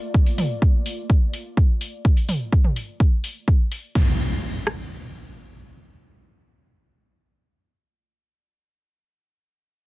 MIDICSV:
0, 0, Header, 1, 4, 480
1, 0, Start_track
1, 0, Tempo, 476190
1, 145, Time_signature, 4, 2, 24, 8
1, 9939, End_track
2, 0, Start_track
2, 0, Title_t, "Ambient pad"
2, 0, Program_c, 0, 92
2, 0, Note_on_c, 0, 57, 80
2, 0, Note_on_c, 0, 58, 93
2, 0, Note_on_c, 0, 65, 86
2, 0, Note_on_c, 0, 74, 84
2, 144, Note_off_c, 0, 58, 0
2, 144, Note_off_c, 0, 74, 0
2, 145, Note_off_c, 0, 57, 0
2, 145, Note_off_c, 0, 65, 0
2, 9939, End_track
3, 0, Start_track
3, 0, Title_t, "Impact"
3, 0, Program_c, 1, 103
3, 3986, Note_on_c, 1, 60, 62
3, 7493, Note_off_c, 1, 60, 0
3, 9939, End_track
4, 0, Start_track
4, 0, Title_t, "Drums"
4, 145, Note_on_c, 9, 36, 102
4, 246, Note_off_c, 9, 36, 0
4, 266, Note_on_c, 9, 46, 58
4, 367, Note_off_c, 9, 46, 0
4, 385, Note_on_c, 9, 45, 92
4, 385, Note_on_c, 9, 46, 92
4, 486, Note_off_c, 9, 45, 0
4, 486, Note_off_c, 9, 46, 0
4, 625, Note_on_c, 9, 36, 105
4, 726, Note_off_c, 9, 36, 0
4, 865, Note_on_c, 9, 46, 94
4, 966, Note_off_c, 9, 46, 0
4, 1105, Note_on_c, 9, 36, 98
4, 1206, Note_off_c, 9, 36, 0
4, 1345, Note_on_c, 9, 46, 90
4, 1446, Note_off_c, 9, 46, 0
4, 1585, Note_on_c, 9, 36, 100
4, 1686, Note_off_c, 9, 36, 0
4, 1825, Note_on_c, 9, 46, 92
4, 1925, Note_off_c, 9, 46, 0
4, 2065, Note_on_c, 9, 36, 106
4, 2166, Note_off_c, 9, 36, 0
4, 2186, Note_on_c, 9, 46, 56
4, 2286, Note_off_c, 9, 46, 0
4, 2305, Note_on_c, 9, 45, 85
4, 2305, Note_on_c, 9, 46, 92
4, 2406, Note_off_c, 9, 45, 0
4, 2406, Note_off_c, 9, 46, 0
4, 2545, Note_on_c, 9, 36, 105
4, 2646, Note_off_c, 9, 36, 0
4, 2665, Note_on_c, 9, 45, 77
4, 2766, Note_off_c, 9, 45, 0
4, 2785, Note_on_c, 9, 46, 92
4, 2886, Note_off_c, 9, 46, 0
4, 3025, Note_on_c, 9, 36, 102
4, 3126, Note_off_c, 9, 36, 0
4, 3265, Note_on_c, 9, 46, 88
4, 3366, Note_off_c, 9, 46, 0
4, 3505, Note_on_c, 9, 36, 102
4, 3606, Note_off_c, 9, 36, 0
4, 3745, Note_on_c, 9, 46, 94
4, 3846, Note_off_c, 9, 46, 0
4, 3985, Note_on_c, 9, 36, 101
4, 3985, Note_on_c, 9, 49, 77
4, 4086, Note_off_c, 9, 36, 0
4, 4086, Note_off_c, 9, 49, 0
4, 4705, Note_on_c, 9, 37, 56
4, 4806, Note_off_c, 9, 37, 0
4, 9939, End_track
0, 0, End_of_file